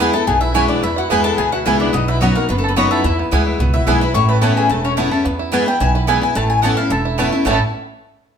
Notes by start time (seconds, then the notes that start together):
Already playing: E2 B3
0.00 E3 G#3 B3 E4 G#4 B4 G#5
0.13 B3 E4 A4 A5
0.27 B1 B2 B3 G#4 G#5
0.41 E4 E5
0.54 E3 G#3 B3 C#4 E4 B4 C#5 G#5
0.68 D4 E4 D5
0.82 E2 B3 E4 E5
0.96 E4 F#4 F#5
1.10 E2 E3 G#3 B3 E4 G#4 B4 G#5
1.24 E4 A4 A5
1.38 D2 B2 B3 G#4 G#5
1.52 E4 F#4 F#5
1.65 C#2 E3 G#3 B3 E4 B4 E5 G#5
1.80 D4 E4 D5
1.93 B1 B2 B3 D#4 D#5
2.08 D#4 E4 E5
2.21 F#3 B3 C#4 D#4 F#4 C#5 D#5 B5
2.35 A#3 D#4 F#4 A#4
2.49 F#1 F#2 B3 B4
2.58 A3 A4
2.64 B3 A4
2.68 B4
2.76 F#3 B3 C#4 D#4 F#4 C#5 D#5 B5
2.91 E4 A4 E5
3.04 E2 E4
3.19 B3
3.31 D2 E3 G#3 B3 E4 B4 G#5
3.47 E4
3.59 C#2 B2 B3
3.73 E4 E5
3.86 B1 E3 G#3 B3 E4 G#4 B4 G#5
4.01 B3 E4 B4 B5
4.14 A1 A2 E4 C#5 C#6
4.29 A3 B4 B5
4.41 E3 B3 C#4 E4 A4 C#5 A5
4.57 E4 G#4 G#5
4.69 E1 E2 A3 A4 A5
4.84 C#4 C#5
4.97 E3 B3 C#4 E4 C#5 A5
5.11 C#4 E4 A4
5.25 E2 B3
5.39 E4
5.52 E3 G#3 B3 E4 B4 G#5 A5
5.66 B3 E4 G5
5.80 B1 B2 E4 G#5
5.95 E4 B4
6.07 E3 G#3 B3 E4 B4 E5 G#5
6.21 B3 E4 G#5
6.35 A1 A2 A3 A5
6.50 G#5
6.62 E3 B3 C#4 E4 A4 C#5 F#5 A5
6.77 C#4 E4 F5
6.90 E1 E2 A4 E5
7.05 E4
7.18 E3 A3 B3 C#4 E4 C#5 A5
7.32 C#4 E4
7.45 A1 A2 E3 A3 B3 C#4 E4 C#5 E5 A5
7.49 C#4 E4
7.53 A4